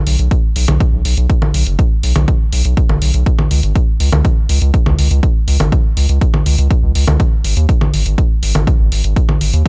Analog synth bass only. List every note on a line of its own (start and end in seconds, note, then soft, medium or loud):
0.07 0.16 B1 loud
0.19 0.29 B1 medium
0.56 0.65 B1 medium
0.68 0.78 B1 medium
0.93 1.02 B1 medium
1.05 1.15 B1 medium
1.17 1.27 B1 medium
1.54 1.64 B1 medium
1.66 1.76 F#1 medium
2.03 2.13 B1 medium
2.16 2.25 B1 medium
2.53 2.62 B1 loud
2.65 2.74 B1 medium
2.90 2.99 F#1 medium
3.02 3.11 B1 medium
3.14 3.24 B1 medium
3.51 3.61 C#2 medium
3.63 3.73 G#1 medium
4.00 4.10 C#2 medium
4.12 4.22 C#2 medium
4.49 4.59 C#2 medium
4.62 4.71 C#2 medium
4.86 4.96 C#2 medium
4.98 5.08 C#2 medium
5.11 5.20 C#2 medium
5.48 5.57 C#2 medium
5.60 5.69 G#1 medium
5.97 6.06 C#2 loud
6.09 6.19 C#2 medium
6.46 6.56 C#2 loud
6.58 6.68 C#2 medium
6.83 6.92 C#2 medium
6.95 7.05 C#2 medium
7.07 7.17 C#2 medium
7.44 7.54 G#1 medium
7.57 7.66 D#2 medium
7.93 8.03 G#1 loud
8.06 8.15 G#1 medium
8.43 8.52 G#1 medium
8.55 8.65 G#1 medium
8.80 8.89 G#1 medium
8.92 9.01 G#1 medium
9.04 9.14 G#1 medium
9.41 9.51 G#1 loud
9.53 9.63 D#2 medium